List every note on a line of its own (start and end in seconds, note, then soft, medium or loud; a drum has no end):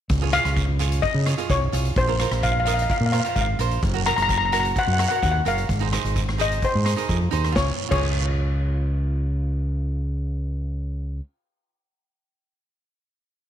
0.09 0.37 C#2 medium
0.09 kick loud
0.09 closed hi-hat medium
0.09 long guiro medium
0.22 0.29 F4 medium
0.22 0.29 G#4 medium
0.22 0.30 C#5 medium
0.33 0.61 F4 medium
0.33 0.62 G#4 medium
0.33 0.62 C#5 medium
0.33 1.05 F5 loud
0.33 cross-stick medium
0.33 closed hi-hat medium
0.33 short guiro medium
0.45 0.99 C#2 medium
0.45 cross-stick medium
0.45 closed hi-hat medium
0.56 kick medium
0.56 closed hi-hat medium
0.56 short guiro medium
0.79 1.08 F4 medium
0.79 1.08 G#4 medium
0.79 1.09 C#5 medium
0.79 closed hi-hat medium
0.79 short guiro medium
0.92 closed hi-hat medium
1.02 1.51 D#5 medium
1.02 kick medium
1.02 closed hi-hat soft
1.02 long guiro medium
1.14 1.33 C#3 medium
1.26 1.34 F4 medium
1.26 1.34 G#4 soft
1.26 1.34 C#5 medium
1.26 cross-stick medium
1.26 closed hi-hat medium
1.38 1.59 F4 medium
1.38 1.59 G#4 medium
1.38 1.60 C#5 medium
1.38 closed hi-hat medium
1.49 1.68 C2 medium
1.49 1.98 C#5 medium
1.49 kick medium
1.49 closed hi-hat medium
1.49 short guiro medium
1.72 1.91 C2 medium
1.72 1.94 F4 medium
1.72 1.94 G#4 medium
1.72 1.95 C#5 medium
1.72 closed hi-hat medium
1.85 closed hi-hat soft
1.96 2.23 A#1 medium
1.96 2.45 C5 medium
1.96 kick loud
1.96 closed hi-hat medium
1.96 long guiro medium
2.08 2.15 F4 medium
2.08 2.15 A#4 medium
2.08 2.16 C5 medium
2.20 2.48 F4 medium
2.20 2.48 A#4 medium
2.20 2.49 C5 medium
2.20 cross-stick medium
2.20 closed hi-hat medium
2.20 short guiro medium
2.31 2.85 A#1 medium
2.31 cross-stick medium
2.31 closed hi-hat medium
2.43 2.50 F5 medium
2.43 kick medium
2.43 closed hi-hat medium
2.43 short guiro medium
2.52 2.58 F5 medium
2.60 2.64 F5 medium
2.65 2.94 F4 medium
2.65 2.95 A#4 medium
2.65 2.95 D#5 medium
2.65 2.72 F5 soft
2.65 closed hi-hat medium
2.65 short guiro medium
2.74 2.81 F5 medium
2.79 2.88 F5 medium
2.79 closed hi-hat medium
2.90 2.96 F5 medium
2.90 kick medium
2.90 closed hi-hat soft
2.90 long guiro medium
2.97 3.19 A#2 medium
2.97 3.04 F5 soft
3.06 3.11 F5 medium
3.12 3.20 F4 medium
3.12 3.20 A#4 medium
3.12 3.21 C5 medium
3.12 3.18 F5 soft
3.12 cross-stick medium
3.12 closed hi-hat medium
3.20 3.26 F5 medium
3.24 3.46 F4 medium
3.24 3.46 A#4 medium
3.24 3.46 C5 medium
3.24 closed hi-hat medium
3.29 3.34 F5 soft
3.36 3.54 G#1 medium
3.36 3.40 F5 medium
3.36 kick medium
3.36 closed hi-hat soft
3.36 short guiro medium
3.41 3.48 F5 medium
3.59 3.77 A#1 medium
3.59 3.80 F4 medium
3.59 3.81 A#4 medium
3.59 3.81 C5 medium
3.59 closed hi-hat medium
3.71 closed hi-hat soft
3.82 4.10 F#1 loud
3.82 kick loud
3.82 closed hi-hat soft
3.82 long guiro medium
3.94 4.01 F#4 medium
3.94 4.02 A#4 medium
3.94 4.02 C#5 medium
4.06 4.34 F#4 medium
4.06 4.34 A#4 medium
4.06 4.35 C#5 medium
4.06 4.14 A#5 loud
4.06 cross-stick medium
4.06 closed hi-hat medium
4.06 short guiro medium
4.16 4.72 F#1 medium
4.16 4.21 A#5 medium
4.16 cross-stick medium
4.16 closed hi-hat medium
4.22 4.29 A#5 medium
4.29 4.36 A#5 medium
4.29 kick medium
4.29 closed hi-hat medium
4.29 short guiro medium
4.38 4.44 A#5 medium
4.45 4.52 A#5 medium
4.52 4.80 F#4 medium
4.52 4.81 A#4 medium
4.52 4.81 C#5 medium
4.52 4.59 A#5 medium
4.52 closed hi-hat medium
4.52 short guiro medium
4.60 4.67 A#5 medium
4.65 closed hi-hat medium
4.76 4.85 F#5 medium
4.76 kick medium
4.76 closed hi-hat medium
4.76 long guiro medium
4.86 5.06 F#2 medium
4.86 4.92 F#5 medium
4.93 4.99 F#5 medium
4.98 5.06 F#4 medium
4.98 5.07 A#4 medium
4.98 5.07 C#5 medium
4.98 5.07 F#5 medium
4.98 cross-stick medium
4.98 closed hi-hat medium
5.09 5.32 F#4 medium
5.09 5.32 A#4 medium
5.09 5.32 C#5 medium
5.09 5.15 F#5 medium
5.09 closed hi-hat medium
5.16 5.22 F#5 medium
5.23 5.41 D#2 medium
5.23 5.29 F#5 medium
5.23 kick medium
5.23 closed hi-hat medium
5.23 short guiro medium
5.32 5.38 F#5 medium
5.45 5.63 F#1 medium
5.45 5.67 F#4 medium
5.45 5.67 A#4 medium
5.45 5.67 C#5 medium
5.45 6.43 F5 medium
5.45 closed hi-hat medium
5.58 closed hi-hat soft
5.69 5.97 G#1 loud
5.69 kick medium
5.69 closed hi-hat medium
5.69 long guiro medium
5.80 5.87 D#4 medium
5.80 5.88 G#4 medium
5.80 5.88 C5 medium
5.92 6.20 D#4 medium
5.92 6.21 G#4 medium
5.92 6.21 C5 medium
5.92 cross-stick medium
5.92 closed hi-hat medium
5.92 short guiro medium
6.04 6.58 G#1 medium
6.04 closed hi-hat medium
6.16 kick medium
6.16 closed hi-hat medium
6.16 short guiro medium
6.29 cross-stick medium
6.38 6.67 D#4 medium
6.38 6.67 G#4 medium
6.38 6.68 C5 medium
6.38 6.51 D#5 medium
6.38 closed hi-hat medium
6.38 short guiro medium
6.52 closed hi-hat medium
6.62 7.30 C5 medium
6.62 kick medium
6.62 closed hi-hat medium
6.62 long guiro medium
6.75 6.93 G#2 medium
6.84 6.92 D#4 medium
6.84 6.93 G#4 medium
6.84 6.93 C5 medium
6.84 cross-stick medium
6.84 closed hi-hat medium
6.96 7.18 D#4 medium
6.96 7.18 G#4 medium
6.96 7.19 A#4 medium
6.96 closed hi-hat medium
7.09 7.30 F2 medium
7.09 kick medium
7.09 closed hi-hat soft
7.09 short guiro medium
7.31 7.53 D#2 medium
7.31 7.52 D#4 medium
7.31 7.53 G#4 medium
7.31 7.54 C5 medium
7.31 closed hi-hat medium
7.44 cross-stick medium
7.44 closed hi-hat soft
7.52 7.69 C#2 medium
7.52 7.67 F4 medium
7.52 7.69 G#4 medium
7.52 7.69 C#5 medium
7.52 kick medium
7.52 snare medium
7.56 7.71 C#5 medium
7.56 long guiro medium
7.89 11.19 C#2 medium
7.89 11.17 F4 medium
7.89 11.20 G#4 medium
7.89 11.19 C#5 medium
7.89 kick medium
7.89 crash medium
7.89 long guiro medium
7.95 11.23 C#5 medium